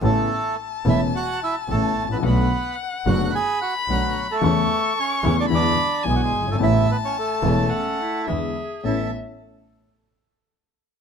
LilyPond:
<<
  \new Staff \with { instrumentName = "Violin" } { \time 4/4 \key a \major \tempo 4 = 109 a''1 | fis''2 b''2 | cis'''2 b''4 gis''4 | a''2 fis''4 e''4 |
e''8 r2. r8 | }
  \new Staff \with { instrumentName = "Bandoneon" } { \time 4/4 \key a \major a'4 r8 e''8 fis''8 e''8 a'8. b'16 | b'4 r8 fis''8 gis''8 fis''8 fis'8. a'16 | a'4 cis''8. d''16 d''4 gis'32 fis'32 gis'8 a'16 | e''8 b'16 cis''16 a'2 r4 |
a'8 r2. r8 | }
  \new Staff \with { instrumentName = "Bandoneon" } { \time 4/4 \key a \major a4 r8 e'8 fis'8 e'8 a8. b16 | b4 r8 fis'8 gis'8 fis'8 fis8. a16 | a4 cis'8. d'16 d'4 gis16 gis8 a16 | e'8 b16 cis'16 a2 r4 |
r1 | }
  \new Staff \with { instrumentName = "Clarinet" } { \time 4/4 \key a \major r1 | r1 | r1 | r2 cis'8 e'8 gis'4 |
e'8 r2. r8 | }
  \new Staff \with { instrumentName = "String section" } { \time 4/4 \key a \major <a b cis'>8 r4 <a b cis'>8 r4 <a b cis'>8 r8 | <a b d'>8 r4 <a b d'>8 r4 <a b d'>8 r8 | <a cis' e'>8 r4 <a cis' e'>8 <gis d' e'>8 r8 <gis d' e'>8 r8 | <a b cis'>8 r4 <a b cis'>8 r4 <gis d' e'>8 r8 |
<a b cis'>8 r2. r8 | }
  \new Staff \with { instrumentName = "Grand piano" } { \clef bass \time 4/4 \key a \major <a,, a, cis a b e'>8 r4 <e,, e, cis a b e'>8 r4 <a,, a, cis a b e'>8 r32 gis,,32 a,,32 bes,,32 | <b,, b, d a b fis'>8 r4 <fis,, fis, d a b fis'>8 r4 <b,, b, d a b fis'>8 r8 | <e, cis e a e'>8 r4 <e, cis e a e'>8 <e, d e gis b e'>8 r8 <b,, b, d gis b e'>8 r32 fis,,32 g,,32 gis,,32 | <a,, a, cis a b e'>8 r4 <e,, e, cis a b e'>8 r4 <e, d e gis b e'>8 r8 |
<a,, a b cis'>8 r2. r8 | }
  \new Staff \with { instrumentName = "Double bass" } { \clef bass \time 4/4 \key a \major a,,8 r4 e,,8 r4 a,,8 a,,8 | b,,8 r4 fis,,8 r4 b,,8 r8 | e,8 r4 e,8 e,8 r8 b,,8 g,,8 | a,,8 r4 e,,8 r4 e,8 r8 |
a,,8 r2. r8 | }
>>